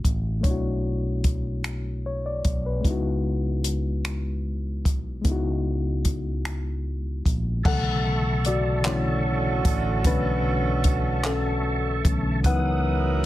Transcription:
Already playing: A3 C#4 D4 E4 F#4
0.05 A1, kick, closed hi-hat
0.41 A3 C#5, kick, closed hi-hat
0.45 B1 D4 E4
0.50 F#4
1.24 kick, closed hi-hat
1.64 finger snap, closed hi-hat
2.06 C#5
2.26 D5
2.45 B1, kick, closed hi-hat
2.66 B4
2.81 G#3 B3, kick
2.85 C#2 D#4 E4, closed hi-hat
2.91 F#4
3.64 closed hi-hat
4.05 finger snap, closed hi-hat
4.85 B1, kick, closed hi-hat
5.22 C#2 G#3 B3, kick, closed hi-hat
5.26 D#4 E4
5.31 F#4
6.05 kick, closed hi-hat
6.45 finger snap, closed hi-hat
7.25 A#1, kick, closed hi-hat
7.63 B1 C#3 D3 E3 A3 A4 E5 F#5 A5 C#6, kick, crash
8.45 F#4 D5, closed hi-hat
8.85 D3 E3 A3 C#4 E4 F#4 C#5, clap, closed hi-hat
9.65 A1, kick, closed hi-hat
10.04 B1 D3 E3 A3 C#4 D4 B4, kick, closed hi-hat
10.84 kick, closed hi-hat
11.24 C#4 A4, clap, closed hi-hat
12.05 B1 D3 E3 A3 C#4, kick, closed hi-hat
12.43 C#2 E3 F#3 B3 D#4 E4 A#4 B4 F#5 D#6, kick, closed hi-hat

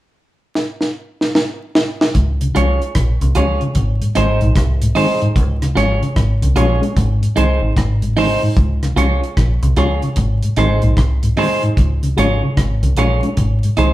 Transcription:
0.55 snare
0.81 snare
1.21 snare
1.35 snare
1.75 snare
2.01 snare
2.15 C#2, kick, closed hi-hat
2.41 C#3, closed hi-hat
2.54 C2 F3 G#3 C#4 F4 G#4 C#5, closed hi-hat
2.82 closed hi-hat
2.95 A#1, kick, cross-stick, closed hi-hat
3.21 C2 C#3, closed hi-hat
3.35 C#2 F3 G#3 C#4 F4 G#4 C#5, closed hi-hat
3.61 C#3, closed hi-hat
3.75 G#1, kick, closed hi-hat
4.01 G#2, closed hi-hat
4.15 G#1 D#3 G#3 C4 D#4 G#4 C5, closed hi-hat
4.41 A#1 G#2, closed hi-hat
4.55 C2, kick, cross-stick, closed hi-hat
4.81 G#2, closed hi-hat
4.95 D#3 G#3 C4 D#4 G#4 C5, open hi-hat
5.22 G#2, closed hi-hat
5.36 C#2, kick, closed hi-hat
5.62 C#3, cross-stick, closed hi-hat
5.75 G#1 F3 G#3 C#4 F4 G#4 C#5, closed hi-hat
6.02 C#3, closed hi-hat
6.16 G#1, kick, cross-stick, closed hi-hat
6.42 C2 C#3, closed hi-hat
6.55 A#1 F3 G#3 C#4 F4 G#4 C#5, closed hi-hat
6.81 G#3 C#4, closed hi-hat
6.97 G#1, kick, closed hi-hat
7.21 G#2, closed hi-hat
7.35 C2 D#3 G#3 C4 D#4 G#4 C5, closed hi-hat
7.62 G#1
7.76 G#1, kick, cross-stick, closed hi-hat
8.02 G#2, closed hi-hat
8.17 D#3 G#3 C4 D#4 G#4 C5, open hi-hat
8.43 G#2
8.57 C#2, kick, closed hi-hat
8.82 C#3, cross-stick, closed hi-hat
8.96 C2 F3 G#3 C#4 F4 G#4 C#5, closed hi-hat
9.24 closed hi-hat
9.37 A#1, kick, cross-stick, closed hi-hat
9.62 C2 C#3, closed hi-hat
9.76 C#2 F3 G#3 C#4 F4 G#4 C#5, closed hi-hat
10.02 C#3, closed hi-hat
10.16 G#1, kick, closed hi-hat
10.43 G#2, closed hi-hat
10.57 G#1 D#3 G#3 C4 D#4 G#4 C5, closed hi-hat
10.82 A#1 G#2, closed hi-hat
10.97 C2, kick, cross-stick, closed hi-hat
11.22 G#2, closed hi-hat
11.36 D#3 G#3 C4 D#4 G#4 C5, open hi-hat
11.63 G#2, closed hi-hat
11.77 C#2, kick, closed hi-hat
12.03 C#3, closed hi-hat
12.17 G#1 F3 G#3 C#4 F4 G#4 C#5, closed hi-hat
12.43 C#3
12.57 G#1, kick, cross-stick, closed hi-hat
12.82 C2 C#3, closed hi-hat
12.97 A#1 F3 G#3 C#4 F4 G#4 C#5, closed hi-hat
13.23 G#3 C#4, closed hi-hat
13.37 G#1, kick, closed hi-hat
13.63 G#2, closed hi-hat
13.77 C2 D#3 G#3 C4 D#4 G#4 C5, closed hi-hat

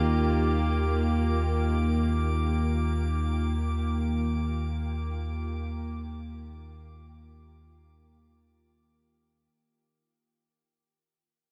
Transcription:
Already playing: D#2 D#3 A#3 F4 G4 D6

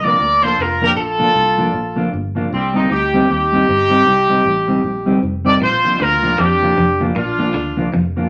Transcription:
Already playing: C2
0.03 F3 A#3 D4 F4 A#4 D5
0.19 D2
0.42 F3 A#3 D4 F4 A4 C5
0.58 F1 A#4
0.62 F4
0.81 F3 A#3 D4 F4 A#4
0.85 G4
0.96 A#1 F4 A4
1.19 F3 A#3 D4 F4
1.35 C2
1.58 F3 A#3 D4 F4
1.74 A#1
1.96 F3 A#3 D4 F4
2.13 G1
2.35 F3 A#3 D4 F4
2.52 C2 G3 C4
2.74 G3 C4 D#4 G4
2.91 D2 D#4 G4
3.14 G3 C4 D#4 G4
3.30 D#2 D#4 G4
3.52 G3 C4 D#4 G4
3.69 G1
3.90 G3 C4 D#4 G4
4.07 C2
4.28 G3 C4 D#4 G4
4.45 A1
4.68 G3 C4 D#4 G4
4.84 A#1
5.06 G3 C4 D#4 G4
5.23 F1
5.45 G3 C4 D#4 G4 A#4 D5
5.62 A#1 A#2 F4 C5
5.84 F3 A#3 D4 F4
6.00 D2 D3 F4 A#4
6.22 F3 A#3 D4 F4
6.38 F2 F3 D4 G4
6.62 F3 A#3 D4 F4
6.78 F1 F2
7.00 F3 A#3 D4 F4
7.16 A#1 A#2 D4 F4
7.38 F3 A#3 D4 F4
7.54 D2 D3
7.77 F3 A#3 D4 F4
7.94 F1 F2
8.16 F3 A#3 D4 F4

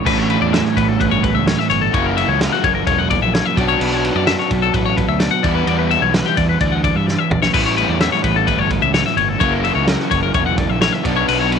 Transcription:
Already playing: A2 D3
0.05 A1 A2 E3 G3 C#4 E4 B4, kick, crash
0.18 C#5
0.30 B4, ride
0.41 E2 D5
0.53 E5, snare, ride
0.65 C#5, snare
0.77 A1 B4, kick, ride
0.88 A4
1.00 G1 B4, kick, ride
1.11 C#5
1.23 B4, kick, ride
1.35 C#2 E5
1.47 C#5, snare, ride
1.59 E5, snare
1.70 G1 C#5, ride
1.82 A4
1.92 F#1 F#2 C#3 E3 A#3 E4 C#5, kick, ride
2.06 A#4
2.17 E5, ride
2.28 C#2 C#5
2.41 A#4, snare, ride
2.52 F#4, snare
2.63 F#1 C#5, kick, ride
2.75 A#4
2.87 E1 C#5, kick, ride
2.99 F#5
3.10 D5, kick, ride
3.21 A#1 E5
3.34 C#5, snare, ride
3.45 E5
3.56 B1 B2 F#3 B3 D4 D5, kick, ride
3.68 C#5
3.80 B1 B4, crash
3.93 C#5
4.04 B4, ride
4.15 F#2 D5
4.27 E5, snare, ride
4.39 C#5, snare
4.51 B1 B4, kick, ride
4.62 A4
4.74 A1 B4, kick, ride
4.86 C#5
4.97 B4, kick, ride
5.07 D2 E5
5.20 D5, snare, ride
5.31 F#5
5.43 E2 E3 G3 B3 E4 D5, kick, ride
5.55 B4
5.67 E2 D5, ride
5.79 B4
5.91 E5, ride
6.02 B1 C#5
6.14 B4, snare, ride
6.26 G4, snare
6.37 E2 D5, kick, ride
6.49 B4
6.60 D2 D5, kick, ride
6.72 F#5
6.84 D5, kick, ride
6.95 G2 E5
7.07 D5, snare
7.19 E5
7.30 A#1 D5, mid tom
7.42 C#5, snare
7.53 A1 A2 E3 G3 C#4 E4 B4, kick, crash
7.66 C#5
7.77 B4, ride
7.88 E2 D5
8.00 E5, snare, ride
8.12 C#5, snare
8.24 A1 B4, kick, ride
8.36 A4
8.47 G1 B4, kick, ride
8.59 C#5
8.70 B4, kick, ride
8.82 C#2 E5
8.94 C#5, snare, ride
9.06 E5, snare
9.16 G1 C#5, ride
9.29 A4
9.39 F#1 F#2 C#3 E3 A#3 E4 C#5, kick, ride
9.52 A#4
9.64 E5, ride
9.75 C#2 C#5
9.87 A#4, snare, ride
9.99 F#4, snare
10.11 F#1 C#5, kick, ride
10.23 A#4
10.34 E1 C#5, kick, ride
10.46 F#5
10.58 D5, kick, ride
10.69 A#1 E5
10.81 C#5, snare, ride
10.92 E5, snare
11.03 B1 B2 F#3 B3 D4 D5, kick, ride
11.16 C#5
11.28 B1 B4, crash
11.40 C#5
11.52 B4, ride

